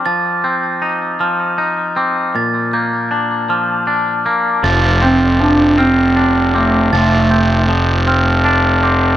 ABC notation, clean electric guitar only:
X:1
M:6/8
L:1/8
Q:3/8=52
K:F
V:1 name="Clean electric guitar"
F, C _E F, E C | B,, B, D F, D B, | F, C F, C D C | F, C F, C D C |]